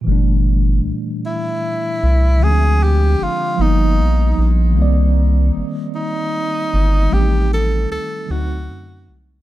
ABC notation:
X:1
M:6/8
L:1/8
Q:3/8=51
K:Cdor
V:1 name="Tenor saxophone"
z3 =E3 | _A G F ^D2 z | z3 E3 | G A A ^F2 z |]
V:2 name="Tine electric piano"
[B,,=E,G,A,D]6 | [D,F,_A,C^CD]3 [F,G,^A,=B,^D]3 | [E,G,B,Cd]6 | [E,G,A,CDE]3 [D,^F,A,CE]3 |]
V:3 name="Analog synth bass" clef=bass
G,,,2 C,, z2 C,, | D,,2 G,,, G,,, ^A,,, A,,, | C,,2 G,,, z2 G,,, | A,,,2 D,, D,, ^F,, C,, |]